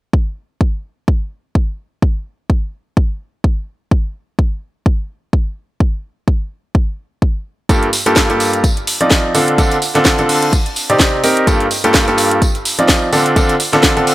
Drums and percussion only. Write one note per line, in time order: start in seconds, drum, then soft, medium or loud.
0.13 kick loud
0.61 kick loud
1.08 kick loud
1.55 kick medium
2.02 kick loud
2.50 kick loud
2.97 kick loud
3.44 kick loud
3.91 kick loud
4.39 kick loud
4.86 kick loud
5.33 kick loud
5.80 kick loud
6.28 kick loud
6.75 kick loud
7.22 kick loud
7.69 kick loud
7.69 closed hi-hat medium
7.69 tambourine medium
7.83 closed hi-hat soft
7.93 open hi-hat loud
7.93 tambourine medium
8.06 closed hi-hat soft
8.16 kick loud
8.16 snare loud
8.16 closed hi-hat medium
8.16 tambourine medium
8.30 closed hi-hat soft
8.40 open hi-hat loud
8.40 tambourine medium
8.53 closed hi-hat soft
8.64 kick loud
8.64 closed hi-hat medium
8.64 tambourine medium
8.77 closed hi-hat soft
8.87 open hi-hat loud
8.87 tambourine medium
9.01 closed hi-hat soft
9.10 kick loud
9.10 snare loud
9.10 closed hi-hat medium
9.10 tambourine medium
9.34 open hi-hat medium
9.34 tambourine medium
9.48 closed hi-hat soft
9.58 kick loud
9.58 closed hi-hat medium
9.58 tambourine medium
9.71 closed hi-hat soft
9.82 open hi-hat medium
9.82 tambourine medium
9.95 snare soft
9.95 closed hi-hat soft
10.05 kick medium
10.05 snare loud
10.05 closed hi-hat medium
10.05 tambourine medium
10.18 closed hi-hat soft
10.29 open hi-hat medium
10.42 closed hi-hat soft
10.53 kick loud
10.53 closed hi-hat medium
10.53 tambourine medium
10.66 closed hi-hat soft
10.76 open hi-hat medium
10.76 tambourine medium
10.90 closed hi-hat soft
10.99 kick loud
10.99 snare loud
10.99 closed hi-hat medium
10.99 tambourine medium
11.24 open hi-hat medium
11.24 tambourine medium
11.37 closed hi-hat soft
11.47 kick loud
11.47 closed hi-hat medium
11.47 tambourine medium
11.60 closed hi-hat soft
11.71 open hi-hat medium
11.71 tambourine medium
11.84 closed hi-hat soft
11.84 closed hi-hat medium
11.94 kick loud
11.94 snare loud
11.94 closed hi-hat medium
11.94 tambourine medium
12.08 closed hi-hat soft
12.18 open hi-hat medium
12.18 tambourine medium
12.31 closed hi-hat soft
12.42 kick loud
12.42 closed hi-hat medium
12.42 tambourine medium
12.55 closed hi-hat soft
12.65 open hi-hat medium
12.65 tambourine medium
12.79 closed hi-hat medium
12.88 kick loud
12.88 snare loud
12.88 closed hi-hat medium
12.88 tambourine medium
13.13 open hi-hat medium
13.13 tambourine medium
13.26 closed hi-hat soft
13.36 kick loud
13.36 closed hi-hat medium
13.36 tambourine medium
13.49 closed hi-hat soft
13.60 open hi-hat medium
13.60 tambourine medium
13.73 snare soft
13.73 closed hi-hat medium
13.83 kick loud
13.83 snare loud
13.83 closed hi-hat medium
13.83 tambourine medium
13.97 closed hi-hat soft
14.07 open hi-hat medium